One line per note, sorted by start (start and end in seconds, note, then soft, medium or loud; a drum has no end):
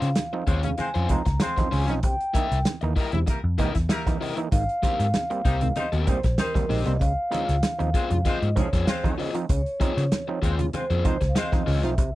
0.00 0.14 C#3 medium
0.00 0.82 F5 medium
0.00 snare soft
0.00 closed hi-hat medium
0.15 snare loud
0.15 closed hi-hat medium
0.15 high conga medium
0.33 0.43 F3 medium
0.33 0.44 C4 medium
0.33 0.44 D#4 medium
0.33 muted overdriven electric guitar stroke soft
0.46 0.72 D#2 medium
0.46 0.58 G#3 medium
0.46 0.58 C4 medium
0.46 0.69 C#4 medium
0.46 0.57 F4 medium
0.46 0.64 F4 medium
0.46 0.58 C5 loud
0.46 0.64 C#5 medium
0.46 kick medium
0.46 closed hi-hat medium
0.63 0.75 C#3 medium
0.63 muted overdriven electric guitar stroke medium
0.63 closed hi-hat medium
0.63 low conga medium
0.78 0.89 G#3 medium
0.78 0.89 C4 medium
0.78 0.89 F4 medium
0.78 0.89 C5 loud
0.78 1.08 G#5 loud
0.78 muted overdriven electric guitar stroke soft
0.78 muted picked electric bass stroke soft
0.78 closed hi-hat medium
0.78 muted conga medium
0.94 1.07 F2 medium
0.94 1.08 C#4 medium
0.94 1.08 F4 medium
0.94 1.09 C5 medium
0.94 closed hi-hat soft
1.09 1.22 F3 medium
1.09 1.20 G#3 medium
1.09 1.20 C4 medium
1.09 1.22 C4 medium
1.09 1.22 D#4 loud
1.09 1.20 F4 medium
1.09 1.20 C5 medium
1.09 1.39 A#5 medium
1.09 muted overdriven electric guitar stroke soft
1.09 kick medium
1.09 closed hi-hat medium
1.09 low conga medium
1.26 1.38 C#2 medium
1.26 muted overdriven electric guitar stroke soft
1.26 kick medium
1.26 snare soft
1.26 closed hi-hat soft
1.40 1.86 G#3 loud
1.40 1.86 C4 loud
1.40 1.86 F4 loud
1.40 1.86 C5 loud
1.40 1.73 C6 loud
1.40 muted overdriven electric guitar stroke soft
1.40 snare loud
1.40 closed hi-hat medium
1.40 high conga medium
1.56 1.68 F3 medium
1.56 1.69 C4 medium
1.56 1.69 D#4 medium
1.56 muted overdriven electric guitar stroke soft
1.56 kick medium
1.56 snare soft
1.56 closed hi-hat soft
1.56 high conga medium
1.71 1.89 C#2 medium
1.71 1.85 C#3 medium
1.71 1.93 C#4 medium
1.71 1.87 F4 medium
1.71 1.87 C#5 medium
1.71 1.87 G#5 medium
1.71 open hi-hat medium
1.88 2.03 B1 medium
1.88 2.00 F3 medium
1.88 2.00 C4 medium
1.88 2.00 D#4 medium
1.88 muted overdriven electric guitar stroke soft
1.88 snare soft
1.88 closed hi-hat medium
2.03 2.16 C2 loud
2.03 2.16 C3 medium
2.03 2.62 G5 medium
2.03 kick loud
2.03 closed hi-hat medium
2.03 muted conga soft
2.20 closed hi-hat soft
2.34 2.47 A#3 medium
2.34 2.47 D#4 medium
2.34 2.56 E4 medium
2.34 2.56 A#4 medium
2.34 2.56 E5 medium
2.34 kick medium
2.34 closed hi-hat medium
2.34 muted conga medium
2.51 2.63 C2 medium
2.51 snare soft
2.51 closed hi-hat medium
2.65 snare loud
2.65 closed hi-hat medium
2.65 high conga medium
2.81 2.94 D#2 medium
2.81 2.93 E3 medium
2.81 2.93 A#3 medium
2.81 2.93 D#4 medium
2.81 muted overdriven electric guitar stroke medium
2.81 closed hi-hat soft
2.96 3.08 G3 medium
2.96 3.08 A#3 medium
2.96 3.18 E4 medium
2.96 3.08 E4 medium
2.96 3.13 A#4 medium
2.96 3.08 A#4 loud
2.96 3.12 D#5 medium
2.96 kick medium
2.96 open hi-hat soft
3.12 3.25 E2 medium
3.12 3.24 C3 soft
3.12 muted overdriven electric guitar stroke soft
3.12 closed hi-hat medium
3.12 low conga medium
3.26 3.39 G3 medium
3.26 3.39 A#3 medium
3.26 3.39 E4 medium
3.26 3.39 A#4 loud
3.26 muted overdriven electric guitar stroke soft
3.26 muted picked electric bass stroke soft
3.26 kick medium
3.26 closed hi-hat medium
3.26 muted conga medium
3.44 3.56 F2 medium
3.58 3.71 E3 medium
3.58 3.70 G3 medium
3.58 3.71 A#3 medium
3.58 3.70 A#3 medium
3.58 3.71 D#4 medium
3.58 3.76 E4 medium
3.58 3.70 E4 medium
3.58 3.74 A#4 medium
3.58 3.70 A#4 medium
3.58 3.73 D#5 medium
3.58 kick medium
3.58 closed hi-hat medium
3.58 low conga medium
3.75 3.87 E2 medium
3.75 muted overdriven electric guitar stroke soft
3.75 kick medium
3.75 snare soft
3.75 closed hi-hat soft
3.89 4.35 G3 loud
3.89 4.35 A#3 loud
3.89 4.35 E4 medium
3.89 4.35 A#4 loud
3.89 muted overdriven electric guitar stroke soft
3.89 snare loud
3.89 closed hi-hat loud
3.89 high conga medium
4.06 4.17 E3 medium
4.06 4.17 A#3 medium
4.06 4.17 D#4 medium
4.06 kick loud
4.06 snare soft
4.06 closed hi-hat soft
4.06 high conga medium
4.21 4.33 C3 medium
4.21 4.38 E4 medium
4.21 4.36 A#4 medium
4.21 4.36 D#5 medium
4.21 open hi-hat medium
4.37 4.48 E3 medium
4.37 4.48 A#3 medium
4.37 4.48 D#4 medium
4.37 muted overdriven electric guitar stroke soft
4.37 closed hi-hat soft
4.52 4.65 G#1 loud
4.52 4.64 G#2 medium
4.52 4.64 D#3 medium
4.52 5.80 F5 loud
4.52 kick loud
4.52 closed hi-hat loud
4.52 muted conga soft
4.69 closed hi-hat soft
4.83 4.95 A#3 medium
4.83 5.05 C4 medium
4.83 4.95 C4 medium
4.83 5.05 G4 medium
4.83 5.05 A#4 medium
4.83 muted picked electric bass stroke soft
4.83 kick medium
4.83 closed hi-hat medium
4.83 muted conga medium
4.99 5.11 G#2 medium
4.99 snare soft
4.99 closed hi-hat medium
5.14 snare loud
5.14 closed hi-hat medium
5.14 high conga medium
5.30 5.41 G3 medium
5.30 5.41 A#3 medium
5.30 5.42 C4 medium
5.30 muted overdriven electric guitar stroke soft
5.30 closed hi-hat soft
5.45 5.70 C2 medium
5.45 5.56 G3 medium
5.45 5.57 A#3 medium
5.45 5.67 C4 medium
5.45 5.56 D#4 medium
5.45 5.61 G4 medium
5.45 5.57 A#4 medium
5.45 5.61 C5 medium
5.45 kick medium
5.45 closed hi-hat medium
5.61 5.73 G#2 soft
5.61 5.73 D#3 soft
5.61 muted overdriven electric guitar stroke soft
5.61 closed hi-hat medium
5.61 low conga medium
5.76 5.87 G3 medium
5.76 5.88 C4 medium
5.76 5.87 D#4 medium
5.76 5.88 C5 loud
5.76 5.90 D#5 loud
5.76 muted overdriven electric guitar stroke soft
5.76 muted picked electric bass stroke soft
5.76 closed hi-hat medium
5.76 muted conga medium
5.92 6.05 D#2 medium
5.92 6.07 C4 medium
5.92 6.07 G4 medium
5.92 6.07 A#4 medium
5.92 closed hi-hat soft
6.07 6.19 G3 medium
6.07 6.20 A#3 medium
6.07 6.20 C4 loud
6.07 6.19 C4 medium
6.07 6.19 D#4 medium
6.07 6.39 C5 medium
6.07 6.19 C5 medium
6.07 muted overdriven electric guitar stroke soft
6.07 kick medium
6.07 closed hi-hat medium
6.07 low conga medium
6.23 6.36 A#1 medium
6.23 muted overdriven electric guitar stroke soft
6.23 kick medium
6.23 snare soft
6.23 closed hi-hat soft
6.38 6.84 G3 loud
6.38 6.84 C4 medium
6.38 6.85 D#4 loud
6.38 6.67 A#4 loud
6.38 6.84 C5 loud
6.38 muted overdriven electric guitar stroke soft
6.38 snare loud
6.38 closed hi-hat medium
6.38 high conga medium
6.55 6.66 G3 medium
6.55 6.66 A#3 medium
6.55 6.66 C4 medium
6.55 muted overdriven electric guitar stroke medium
6.55 kick loud
6.55 snare soft
6.55 closed hi-hat soft
6.55 high conga medium
6.69 6.83 A#1 medium
6.69 6.81 G#2 medium
6.69 6.82 D#3 medium
6.69 6.91 C4 medium
6.69 6.86 G4 medium
6.69 6.86 C5 medium
6.69 7.01 D#5 medium
6.69 open hi-hat medium
6.85 7.01 C2 medium
6.85 6.97 G3 medium
6.85 6.97 A#3 medium
6.85 6.97 C4 medium
6.85 muted overdriven electric guitar stroke soft
6.85 snare soft
6.85 closed hi-hat soft
6.99 7.14 C#2 loud
6.99 7.13 C#3 medium
6.99 8.28 F5 loud
6.99 kick loud
6.99 closed hi-hat medium
6.99 muted conga soft
7.31 7.43 C4 medium
7.31 7.44 D#4 medium
7.31 7.54 F4 medium
7.31 7.54 G#4 loud
7.31 7.54 C#5 medium
7.31 closed hi-hat medium
7.31 muted conga medium
7.48 7.61 C#2 medium
7.48 snare soft
7.48 closed hi-hat medium
7.63 snare loud
7.63 closed hi-hat loud
7.63 high conga medium
7.79 7.92 D#2 medium
7.79 7.90 F3 medium
7.79 7.90 C4 medium
7.79 7.90 D#4 medium
7.79 muted overdriven electric guitar stroke soft
7.79 closed hi-hat soft
7.94 8.05 G#3 medium
7.94 8.05 C4 medium
7.94 8.16 F4 medium
7.94 8.05 F4 medium
7.94 8.11 G#4 medium
7.94 8.05 C5 medium
7.94 8.10 C5 medium
7.94 kick loud
7.94 closed hi-hat medium
8.10 8.23 F2 medium
8.10 8.21 C#3 soft
8.10 muted overdriven electric guitar stroke medium
8.10 closed hi-hat medium
8.10 low conga medium
8.25 8.37 G#3 medium
8.25 8.37 C4 loud
8.25 8.47 F4 medium
8.25 8.36 F4 medium
8.25 8.47 G#4 medium
8.25 8.48 C5 medium
8.25 8.37 C5 loud
8.25 8.57 D#5 loud
8.25 muted picked electric bass stroke soft
8.25 kick medium
8.25 closed hi-hat medium
8.25 muted conga medium
8.42 8.54 G#2 medium
8.42 closed hi-hat soft
8.56 8.68 F3 loud
8.56 8.68 F3 medium
8.56 8.68 G#3 medium
8.56 8.68 C4 medium
8.56 8.68 C#4 medium
8.56 8.69 D#4 loud
8.56 8.68 G#4 medium
8.56 8.85 C#5 medium
8.56 muted overdriven electric guitar stroke soft
8.56 kick medium
8.56 closed hi-hat medium
8.56 low conga medium
8.73 8.85 F2 medium
8.73 8.86 F4 medium
8.73 8.86 G#4 medium
8.73 8.87 C5 medium
8.73 kick medium
8.73 snare soft
8.73 closed hi-hat soft
8.87 9.33 G#3 loud
8.87 9.33 C4 loud
8.87 9.33 F4 loud
8.87 9.33 C5 loud
8.87 9.02 C5 medium
8.87 muted overdriven electric guitar stroke soft
8.87 snare loud
8.87 closed hi-hat medium
8.87 high conga medium
9.04 9.14 F3 medium
9.04 9.15 C4 medium
9.04 9.15 D#4 medium
9.04 kick loud
9.04 closed hi-hat soft
9.04 high conga medium
9.18 9.30 C#3 medium
9.18 9.36 F4 medium
9.18 9.34 G#4 medium
9.18 9.33 C5 medium
9.18 9.33 D#5 medium
9.18 open hi-hat medium
9.34 9.45 F3 medium
9.34 9.46 C4 medium
9.34 9.46 D#4 medium
9.34 muted overdriven electric guitar stroke soft
9.34 closed hi-hat soft
9.49 9.63 C#2 loud
9.49 9.62 C#3 medium
9.49 10.39 C#5 medium
9.49 kick loud
9.49 closed hi-hat medium
9.49 muted conga soft
9.66 closed hi-hat soft
9.80 9.93 C4 medium
9.80 9.93 D#4 medium
9.80 10.02 F4 medium
9.80 10.03 G#4 medium
9.80 10.03 C5 medium
9.80 muted picked electric bass stroke medium
9.80 kick medium
9.80 closed hi-hat medium
9.80 muted conga medium
9.97 10.09 C#3 medium
9.97 snare soft
9.97 closed hi-hat medium
10.12 snare loud
10.12 closed hi-hat medium
10.12 high conga medium
10.28 10.39 F3 medium
10.28 10.39 C4 medium
10.28 10.39 D#4 medium
10.28 muted overdriven electric guitar stroke medium
10.42 10.68 D#2 medium
10.42 10.54 G#3 medium
10.42 10.54 C4 medium
10.42 10.64 F4 medium
10.42 10.54 F4 medium
10.42 10.59 G#4 medium
10.42 10.54 C5 loud
10.42 10.59 C#5 medium
10.42 kick medium
10.42 closed hi-hat medium
10.59 10.70 C#3 medium
10.59 muted overdriven electric guitar stroke soft
10.59 closed hi-hat medium
10.59 low conga medium
10.73 10.85 G#3 medium
10.73 10.85 C4 medium
10.73 10.85 F4 medium
10.73 10.85 C5 medium
10.73 11.32 C5 loud
10.73 muted picked electric bass stroke soft
10.73 muted overdriven electric guitar stroke soft
10.73 closed hi-hat medium
10.73 muted conga medium
10.90 11.02 F2 medium
10.90 11.03 F4 medium
10.90 11.04 G#4 medium
10.90 11.04 C5 medium
10.90 closed hi-hat soft
11.05 11.17 F3 medium
11.05 11.16 G#3 medium
11.05 11.17 C4 medium
11.05 11.16 C4 medium
11.05 11.17 D#4 loud
11.05 11.16 F4 medium
11.05 11.16 C5 medium
11.05 muted overdriven electric guitar stroke soft
11.05 kick medium
11.05 closed hi-hat medium
11.05 low conga medium
11.21 11.33 C#2 medium
11.21 muted overdriven electric guitar stroke medium
11.21 kick medium
11.21 snare soft
11.21 closed hi-hat soft
11.29 11.36 F5 medium
11.35 11.82 G#3 loud
11.35 11.82 C4 loud
11.35 11.82 F4 loud
11.35 11.82 C5 loud
11.35 11.85 D#5 loud
11.35 muted overdriven electric guitar stroke soft
11.35 snare loud
11.35 closed hi-hat medium
11.35 high conga medium
11.52 11.63 F3 medium
11.52 11.63 C4 medium
11.52 11.63 D#4 medium
11.52 muted overdriven electric guitar stroke soft
11.52 kick loud
11.52 snare soft
11.52 closed hi-hat soft
11.52 high conga medium
11.67 11.84 C#2 medium
11.67 11.79 C#3 medium
11.67 11.89 F4 medium
11.67 11.83 G#4 loud
11.67 11.83 C#5 loud
11.67 open hi-hat medium
11.83 11.98 B1 medium
11.83 11.94 F3 medium
11.83 11.94 C4 medium
11.83 11.95 D#4 medium
11.83 12.15 E5 medium
11.83 muted overdriven electric guitar stroke medium
11.83 snare soft
11.83 closed hi-hat medium
11.98 12.11 C2 loud
11.98 12.10 C3 medium
11.98 kick loud
11.98 closed hi-hat medium
11.98 muted conga soft